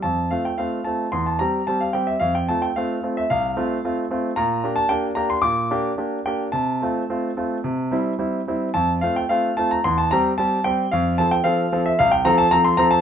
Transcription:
\new Staff \with { instrumentName = "Grand piano" } { \time 4/4 \key f \major \tempo 4 = 111 << { a''8 f''16 g''16 f''8 a''8 c'''16 a''16 bes''8 a''16 f''16 g''16 e''16 | f''16 g''16 a''16 g''16 f''8. e''16 f''2 | bes''8. a''16 g''8 bes''16 c'''16 d'''4. g''8 | a''2. r4 |
a''8 f''16 g''16 f''8 a''16 bes''16 c'''16 a''16 bes''8 a''8 g''8 | f''8 a''16 g''16 f''8. e''16 f''16 g''16 bes''16 a''16 bes''16 c'''16 bes''16 a''16 | } \\ { f,8 <a c' f'>8 <a c' f'>8 <a c' f'>8 e,8 <g c' g'>8 <g c' g'>8 <g c' g'>8 | f,8 <a c' f'>8 <a c' f'>8 <a c' f'>8 c,8 <a c' f'>8 <a c' f'>8 <a c' f'>8 | bes,8 <bes d' g'>8 <bes d' g'>8 <bes d' g'>8 bes,8 <bes d' g'>8 <bes d' g'>8 <bes d' g'>8 | c8 <a c' f'>8 <a c' f'>8 <a c' f'>8 c8 <g c' e'>8 <g c' e'>8 <g c' e'>8 |
f,8 <a c' f'>8 <a c' f'>8 <a c' f'>8 e,8 <g c' g'>8 <g c' g'>8 <g c' g'>8 | f,8 <f c' a'>8 <f c' a'>8 <f c' a'>8 c,8 <f c' a'>8 <f c' a'>8 <f c' a'>8 | } >> }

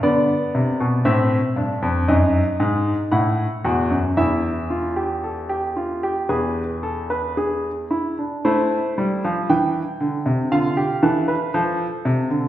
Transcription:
<<
  \new Staff \with { instrumentName = "Grand piano" } { \time 4/4 \key a \minor \tempo 4 = 58 << { d''4 e''4 dis''4 fis''4 | e''2 b'4. r8 | c''4 g''4 f''2 | } \\ { b4 c'8 d'8 dis'4 e'8 fis'8 | e'8 f'16 g'16 a'16 g'16 f'16 g'16 gis'8 a'16 b'16 gis'8 e'16 d'16 | e'2 f'16 g'16 a'16 b'16 a'4 | } >> }
  \new Staff \with { instrumentName = "Grand piano" } { \clef bass \time 4/4 \key a \minor d8 c16 b,16 a,8 g,16 f,16 fis,8 gis,8 a,8 e,16 fis,16 | e,2 e,4. r8 | a8 g16 f16 e8 d16 c16 d8 e8 f8 c16 d16 | }
>>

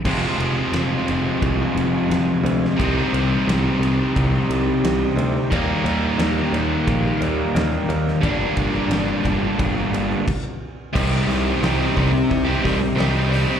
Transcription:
<<
  \new Staff \with { instrumentName = "String machine" } { \time 4/4 \key c \minor \tempo 4 = 88 <f' aes' c'' aes''>1 | <ees' g' c'' g''>1 | <ees' g' bes' g''>1 | <d' g' bes' g''>2. r4 |
\tuplet 3/2 { <e' aes' des'' aes''>8 <ees' g' c'' g''>4~ } <ees' g' c'' g''>2. | }
  \new Staff \with { instrumentName = "Distorted electric guitar" } { \time 4/4 \key c \minor <f, c f aes c'>1 | <c g c' ees'>1 | <ees g bes ees'>1 | <g, d g bes d'>2. r4 |
<c g c' ees' g'>4 <c g c' ees' g'>16 <c' ees' g'>16 <g c' ees' g'>8. <c' ees' g'>16 <g c' ees' g'>8 <c g c' ees' g'>8 <g c' ees' g'>16 <c' ees' g'>16 | }
  \new Staff \with { instrumentName = "Steel-string acoustic guitar" } { \time 4/4 \key c \minor r1 | r1 | <ees g bes ees' g'>8. <bes ees' g'>16 <ees g bes ees' g'>16 <bes ees' g'>16 <g bes ees' g'>4 <g bes ees' g'>8 <ees g bes ees' g'>16 <bes ees' g'>16 <g bes ees' g'>16 <bes ees' g'>16 | <g, d g bes d' g'>8. <g bes d' g'>16 <g, d g bes d' g'>16 <g bes d' g'>16 <g bes d' g'>4 <g bes d' g'>16 <g bes d' g'>16 r4 |
<c g c' ees' g'>8 <g c' ees' g'>8 <c g c' ees' g'>8 <g c' ees' g'>8. <c' ees' g'>16 <g c' ees' g'>16 <c' ees' g'>16 <c g c' ees' g'>8 <g c' ees' g'>16 <c' ees' g'>16 | }
  \new Staff \with { instrumentName = "Picked electric bass" } { \clef bass \time 4/4 \key c \minor f,,8 f,,8 f,,8 f,,8 c,8 f,,8 f,,8 d,8 | c,8 c,8 c,8 c,8 c,8 c,8 c,8 d,8 | ees,8 ees,8 ees,8 ees,8 bes,,8 ees,8 ees,8 ees,8 | g,,8 g,,8 g,,8 g,,8 g,,8 g,,8 r4 |
c,8 c,8 c,8 c,8 c,8 c,8 c,4 | }
  \new DrumStaff \with { instrumentName = "Drums" } \drummode { \time 4/4 <cymc bd>8 cymr8 <cymr sn>8 cymr8 <bd cymr>8 cymr8 <cymr sn>8 cymr16 sn16 | <bd cymr>8 cymr8 <cymr sn>8 cymr8 <bd cymr>8 cymr8 <cymr sn>8 cymr8 | <bd cymr>8 cymr8 <cymr sn>8 cymr8 <bd cymr>8 cymr8 <cymr sn>8 cymr16 sn16 | <bd cymr>8 <bd cymr>8 <cymr sn>8 <bd cymr>8 <bd cymr>8 cymr8 <cymc bd>4 |
<cymc bd>8 hho8 <hho sn>8 <hho bd>8 <hho bd>8 <hho bd>8 <hho sn>8 hho8 | }
>>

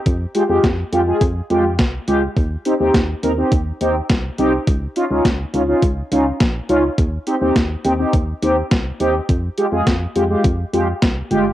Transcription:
<<
  \new Staff \with { instrumentName = "Analog polysynth" } { \time 4/4 \key ees \mixolydian \tempo 4 = 104 r8 <aes f' g'>16 <aes f' g'>16 r8 <aes f' g'>16 <aes f' aes'>16 r8 <aes f' g'>16 r8. <aes f' g'>16 r16 | r8 <c' ees' g'>16 <c' ees' g'>16 r8 <c' ees' bes'>16 <c' ees' g'>16 r8 <c' ees' g'>16 r8. <c' ees' g'>16 r16 | r8 <des' ees' f'>16 <des' ees' f'>16 r8 <des' ees' f'>16 <des' ees' f'>16 r8 <des' ees' f'>16 r8. <des' ees' f'>16 r16 | r8 <c' ees' g'>16 <c' ees' g'>16 r8 <c' ees' g'>16 <c' ees' g'>16 r8 <c' ees' g'>16 r8. <c' ees' g'>16 r16 |
r8 <aes f' g'>16 <aes f' aes'>16 r8 <aes f' g'>16 <aes f' g'>16 r8 <aes f' g'>16 r8. <aes f' g'>16 r16 | }
  \new Staff \with { instrumentName = "FM bass" } { \clef bass \time 4/4 \key ees \mixolydian f,8 r16 f,16 f,8 f,8 f,8 f,8 c,8 des,8 | ees,8 r16 ees,16 ees,8 ees,8 ees,8 ees,8 c,8 c,8 | des,8 r16 des,16 des,8 des,8 des,8 des,8 bes,,8 des,8 | ees,8 r16 ees,16 ees,8 ees,8 ees,8 ees,8 c,8 ees,8 |
f,8 r16 f,16 f,8 f,8 f,8 f,8 c,8 g,,8 | }
  \new DrumStaff \with { instrumentName = "Drums" } \drummode { \time 4/4 <hh bd>8 hh8 <hh bd sn>8 hh8 <hh bd>8 hh8 <hh bd sn>8 hh8 | <hh bd>8 hh8 <hh bd sn>8 hh8 <hh bd>8 hh8 <hh bd sn>8 hh8 | <hh bd>8 hh8 <hh bd sn>8 hh8 <hh bd>8 hh8 <hh bd sn>8 hh8 | <hh bd>8 hh8 <hh bd sn>8 hh8 <hh bd>8 hh8 <hh bd sn>8 hh8 |
<hh bd>8 hh8 <hh bd sn>8 hh8 <hh bd>8 hh8 <hh bd sn>8 hh8 | }
>>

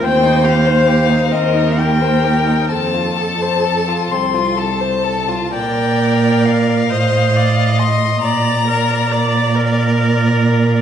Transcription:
<<
  \new Staff \with { instrumentName = "Violin" } { \time 6/8 \key bes \major \tempo 4. = 44 g''8 f''4 ees''8 g''4 | a''4. c'''8 a''4 | g''4 f''4. c'''8 | bes''4. r4. | }
  \new Staff \with { instrumentName = "Viola" } { \time 6/8 \key bes \major c''4. bes'4. | a'2~ a'16 r8. | bes'4. c''8 d''8 ees''8 | d''8 bes'8 d''8 bes'4. | }
  \new Staff \with { instrumentName = "Violin" } { \time 6/8 \key bes \major c'16 ees'16 g'16 c''16 g'16 ees'16 c'16 ees'16 g'16 c''16 g'16 ees'16 | c'16 f'16 a'16 c''16 a'16 f'16 c'16 f'16 a'16 c''16 a'16 f'16 | d''4. ees''4. | d''2. | }
  \new Staff \with { instrumentName = "Cello" } { \clef bass \time 6/8 \key bes \major ees,4. ees,4. | f,4. c,4. | bes,4. a,4. | bes,2. | }
>>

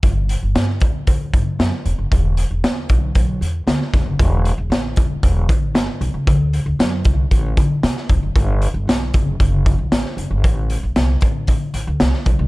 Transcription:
<<
  \new Staff \with { instrumentName = "Upright bass" } { \clef bass \time 4/4 \key g \major \tempo 4 = 115 g,,8. g,,16 g,8 d,8 d,8 g,8 fis,16 r16 e,,16 fis,,16 | e,,8. e,,16 r8 b,,8 b,,8 e,8 d,16 r16 e,,16 fis,,16 | e,,8. e,,16 a,,8 e,,8 e,,8 a,,8 g,,16 r16 b,,16 cis,16 | d,8. d,16 fis,8 c,8 a,,8 d8 c16 r16 e,,16 fis,,16 |
g,,8. g,,16 b,,8 fis,,8 fis,,8. b,,16 a,,16 r16 fis,,16 g,,16 | a,,8. a,,16 c,8 a,,8. r16 a,,16 d,16 c,16 r16 b,,16 c,16 | }
  \new DrumStaff \with { instrumentName = "Drums" } \drummode { \time 4/4 <hh bd>8 hh8 <hh sn>8 <hh bd>8 <hh bd>8 <hh bd>8 <hh sn>8 hh8 | <hh bd>8 hh8 <hh sn>8 <hh bd>8 <hh bd>8 hh8 <hh sn>16 sn16 <hh bd sn>8 | <hh bd>8 hh8 <hh sn>8 <hh bd>8 <hh bd>8 <hh bd>8 <hh sn>8 hh8 | <hh bd>8 hh8 <hh sn>8 <hh bd>8 <hh bd>8 <hh bd>8 <hh sn>16 sn16 <hh bd>8 |
<hh bd>8 hh8 <hh sn>8 <hh bd>8 <hh bd>8 <hh bd>8 <hh sn>16 sn16 hh8 | <hh bd>8 hh8 <hh sn>8 <hh bd>8 <hh bd>8 hh8 <hh sn>16 sn16 <hh bd>8 | }
>>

